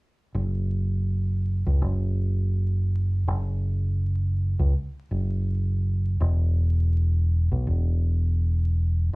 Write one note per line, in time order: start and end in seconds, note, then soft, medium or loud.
0.34 1.62 F#1 medium
1.67 1.80 C#2 medium
1.82 3.25 F#1 medium
3.28 4.55 F#1 medium
4.59 4.72 C#2 medium
5.11 6.18 F#1 medium
6.20 7.48 E1 medium
7.52 7.65 B1 medium
7.67 9.10 E1 loud